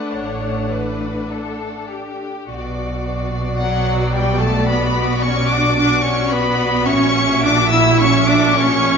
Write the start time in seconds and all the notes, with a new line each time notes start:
Already playing: A3 D4 B4 F#5
0.13 A1 A2 C#5
0.72 B4
1.31 A4
1.90 G4
2.48 B1 B2 F#4 D5
3.57 F#3 F#5
4.13 G3 G5
4.40 A3 A5
4.68 B3 B5
5.22 C#4 C#6
5.49 D4 D6
5.76 D4 D6
6.02 C#4 C#6
6.30 B3 B5
6.85 A#1 A#2 C#4 E5 C#6
7.44 D4 D6
7.70 E4 E6
7.99 C#4 C#6
8.27 D4 D6
8.55 C#4 C#6